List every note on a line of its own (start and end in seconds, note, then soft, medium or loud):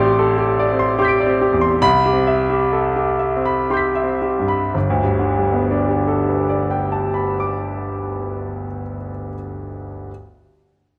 0.00 1.77 A1 medium
0.00 0.73 C4 medium
0.00 0.38 G4 medium
0.00 0.10 D5 medium
0.00 0.79 C6 loud
0.19 0.39 A4 medium
0.38 0.70 G4 medium
0.59 0.91 D5 medium
0.73 1.15 C4 medium
0.79 0.98 C6 medium
0.99 1.31 G4 medium
0.99 1.60 C6 medium
0.99 1.79 G6 medium
1.05 1.80 B6 medium
1.05 1.82 D7 medium
1.20 1.52 D5 medium
1.26 1.70 C4 medium
1.41 1.74 G4 medium
1.53 1.81 E2 medium
1.61 1.82 C6 medium
1.82 4.70 C2 medium
1.82 2.17 B5 loud
2.06 2.41 G4 medium
2.13 2.60 C4 medium
2.27 2.63 E5 medium
2.50 2.86 G4 medium
2.73 2.95 A4 medium
2.96 3.34 G4 medium
3.19 3.59 E5 medium
3.36 3.90 C4 medium
3.45 3.85 B5 medium
3.70 4.12 G4 medium
3.70 4.71 C6 medium
3.70 4.73 G6 soft
3.77 4.74 B6 medium
3.95 4.38 E5 medium
4.04 4.61 C4 medium
4.22 4.64 G4 medium
4.39 4.74 G2 medium
4.48 4.74 B5 medium
4.74 8.66 G1 medium
4.90 8.81 D2 medium
5.03 8.95 G2 medium
5.19 9.11 D3 medium
5.38 9.30 G3 medium
5.53 9.34 B3 medium
5.71 9.34 D4 medium
5.89 9.34 G4 medium
6.08 9.34 A4 medium
6.29 9.35 B4 soft
6.49 9.34 D5 medium
6.71 9.35 G5 medium
6.92 9.34 A5 medium
7.14 9.34 B5 soft
7.40 9.35 D6 medium